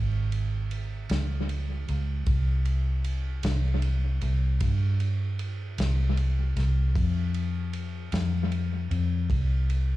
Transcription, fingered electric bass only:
0, 0, Header, 1, 2, 480
1, 0, Start_track
1, 0, Key_signature, -4, "minor"
1, 0, Tempo, 781250
1, 1397, Time_signature, 12, 3, 24, 8
1, 6123, End_track
2, 0, Start_track
2, 0, Title_t, "Fingered electric bass"
2, 0, Program_c, 0, 33
2, 0, Note_on_c, 0, 32, 82
2, 651, Note_off_c, 0, 32, 0
2, 675, Note_on_c, 0, 37, 90
2, 1132, Note_off_c, 0, 37, 0
2, 1160, Note_on_c, 0, 37, 85
2, 1380, Note_off_c, 0, 37, 0
2, 1393, Note_on_c, 0, 36, 86
2, 2091, Note_off_c, 0, 36, 0
2, 2113, Note_on_c, 0, 36, 99
2, 2570, Note_off_c, 0, 36, 0
2, 2594, Note_on_c, 0, 36, 81
2, 2816, Note_off_c, 0, 36, 0
2, 2834, Note_on_c, 0, 43, 85
2, 3531, Note_off_c, 0, 43, 0
2, 3554, Note_on_c, 0, 36, 88
2, 4010, Note_off_c, 0, 36, 0
2, 4034, Note_on_c, 0, 36, 85
2, 4255, Note_off_c, 0, 36, 0
2, 4274, Note_on_c, 0, 41, 90
2, 4970, Note_off_c, 0, 41, 0
2, 4994, Note_on_c, 0, 41, 98
2, 5449, Note_off_c, 0, 41, 0
2, 5474, Note_on_c, 0, 41, 82
2, 5695, Note_off_c, 0, 41, 0
2, 5712, Note_on_c, 0, 36, 86
2, 6123, Note_off_c, 0, 36, 0
2, 6123, End_track
0, 0, End_of_file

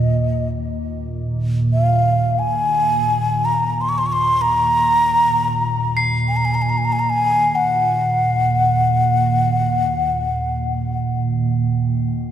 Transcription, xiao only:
0, 0, Header, 1, 2, 480
1, 0, Start_track
1, 0, Tempo, 500000
1, 11823, End_track
2, 0, Start_track
2, 0, Title_t, "Xiao"
2, 0, Program_c, 0, 77
2, 0, Note_on_c, 0, 75, 74
2, 454, Note_off_c, 0, 75, 0
2, 1664, Note_on_c, 0, 77, 69
2, 2294, Note_on_c, 0, 80, 78
2, 2309, Note_off_c, 0, 77, 0
2, 3313, Note_on_c, 0, 82, 73
2, 3327, Note_off_c, 0, 80, 0
2, 3658, Note_on_c, 0, 84, 64
2, 3672, Note_off_c, 0, 82, 0
2, 3733, Note_on_c, 0, 85, 69
2, 3747, Note_off_c, 0, 84, 0
2, 3823, Note_on_c, 0, 84, 61
2, 3838, Note_off_c, 0, 85, 0
2, 3899, Note_on_c, 0, 85, 59
2, 3914, Note_off_c, 0, 84, 0
2, 3961, Note_on_c, 0, 84, 73
2, 3975, Note_off_c, 0, 85, 0
2, 4238, Note_on_c, 0, 82, 93
2, 4252, Note_off_c, 0, 84, 0
2, 5780, Note_off_c, 0, 82, 0
2, 6028, Note_on_c, 0, 80, 58
2, 6111, Note_on_c, 0, 82, 57
2, 6125, Note_off_c, 0, 80, 0
2, 6193, Note_on_c, 0, 80, 63
2, 6208, Note_off_c, 0, 82, 0
2, 6282, Note_on_c, 0, 82, 63
2, 6296, Note_off_c, 0, 80, 0
2, 6354, Note_on_c, 0, 80, 59
2, 6369, Note_off_c, 0, 82, 0
2, 6426, Note_on_c, 0, 82, 59
2, 6440, Note_off_c, 0, 80, 0
2, 6506, Note_on_c, 0, 80, 55
2, 6521, Note_off_c, 0, 82, 0
2, 6576, Note_on_c, 0, 82, 62
2, 6591, Note_off_c, 0, 80, 0
2, 6648, Note_on_c, 0, 80, 58
2, 6662, Note_off_c, 0, 82, 0
2, 6714, Note_on_c, 0, 82, 68
2, 6729, Note_off_c, 0, 80, 0
2, 6814, Note_on_c, 0, 80, 82
2, 6828, Note_off_c, 0, 82, 0
2, 7250, Note_on_c, 0, 78, 71
2, 7264, Note_off_c, 0, 80, 0
2, 10778, Note_off_c, 0, 78, 0
2, 11823, End_track
0, 0, End_of_file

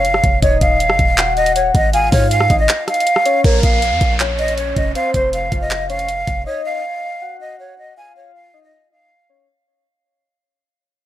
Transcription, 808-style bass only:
0, 0, Header, 1, 2, 480
1, 0, Start_track
1, 0, Key_signature, -5, "minor"
1, 0, Tempo, 377358
1, 541, Time_signature, 4, 2, 24, 8
1, 14062, End_track
2, 0, Start_track
2, 0, Title_t, "808-style bass"
2, 0, Program_c, 0, 38
2, 0, Note_on_c, 0, 29, 109
2, 262, Note_off_c, 0, 29, 0
2, 301, Note_on_c, 0, 29, 102
2, 531, Note_off_c, 0, 29, 0
2, 541, Note_on_c, 0, 27, 121
2, 771, Note_off_c, 0, 27, 0
2, 781, Note_on_c, 0, 27, 108
2, 1139, Note_on_c, 0, 29, 97
2, 1158, Note_off_c, 0, 27, 0
2, 1254, Note_off_c, 0, 29, 0
2, 1261, Note_on_c, 0, 27, 107
2, 2182, Note_off_c, 0, 27, 0
2, 2221, Note_on_c, 0, 32, 101
2, 2682, Note_off_c, 0, 32, 0
2, 2701, Note_on_c, 0, 44, 110
2, 3161, Note_off_c, 0, 44, 0
2, 3181, Note_on_c, 0, 32, 108
2, 3411, Note_off_c, 0, 32, 0
2, 4381, Note_on_c, 0, 34, 117
2, 4611, Note_off_c, 0, 34, 0
2, 4621, Note_on_c, 0, 34, 105
2, 4980, Note_on_c, 0, 41, 97
2, 4999, Note_off_c, 0, 34, 0
2, 5094, Note_off_c, 0, 41, 0
2, 5101, Note_on_c, 0, 34, 101
2, 6022, Note_off_c, 0, 34, 0
2, 6062, Note_on_c, 0, 29, 104
2, 6291, Note_off_c, 0, 29, 0
2, 6541, Note_on_c, 0, 29, 108
2, 7002, Note_off_c, 0, 29, 0
2, 7022, Note_on_c, 0, 29, 102
2, 7943, Note_off_c, 0, 29, 0
2, 7982, Note_on_c, 0, 29, 100
2, 8211, Note_off_c, 0, 29, 0
2, 14062, End_track
0, 0, End_of_file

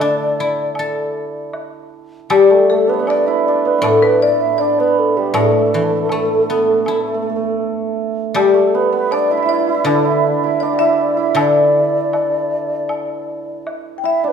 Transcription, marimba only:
0, 0, Header, 1, 2, 480
1, 0, Start_track
1, 0, Tempo, 767263
1, 1446, Time_signature, 4, 2, 24, 8
1, 2400, Tempo, 752823
1, 7200, Tempo, 765306
1, 9057, End_track
2, 0, Start_track
2, 0, Title_t, "Marimba"
2, 0, Program_c, 0, 12
2, 1445, Note_on_c, 0, 67, 70
2, 1688, Note_on_c, 0, 69, 67
2, 1691, Note_off_c, 0, 67, 0
2, 1932, Note_off_c, 0, 69, 0
2, 1941, Note_on_c, 0, 74, 71
2, 2405, Note_on_c, 0, 69, 70
2, 2423, Note_off_c, 0, 74, 0
2, 2520, Note_on_c, 0, 71, 74
2, 2526, Note_off_c, 0, 69, 0
2, 2644, Note_off_c, 0, 71, 0
2, 2647, Note_on_c, 0, 74, 75
2, 2867, Note_off_c, 0, 74, 0
2, 2875, Note_on_c, 0, 74, 69
2, 3362, Note_on_c, 0, 69, 63
2, 3376, Note_off_c, 0, 74, 0
2, 4781, Note_off_c, 0, 69, 0
2, 5283, Note_on_c, 0, 67, 66
2, 5769, Note_on_c, 0, 74, 72
2, 5778, Note_off_c, 0, 67, 0
2, 5966, Note_on_c, 0, 76, 52
2, 5968, Note_off_c, 0, 74, 0
2, 6004, Note_on_c, 0, 74, 71
2, 6007, Note_off_c, 0, 76, 0
2, 6233, Note_off_c, 0, 74, 0
2, 6241, Note_on_c, 0, 74, 74
2, 6706, Note_off_c, 0, 74, 0
2, 6714, Note_on_c, 0, 74, 69
2, 6833, Note_on_c, 0, 76, 75
2, 6840, Note_off_c, 0, 74, 0
2, 7192, Note_on_c, 0, 74, 70
2, 7207, Note_off_c, 0, 76, 0
2, 8609, Note_off_c, 0, 74, 0
2, 8841, Note_on_c, 0, 79, 47
2, 8882, Note_off_c, 0, 79, 0
2, 8887, Note_on_c, 0, 76, 64
2, 9057, Note_off_c, 0, 76, 0
2, 9057, End_track
0, 0, End_of_file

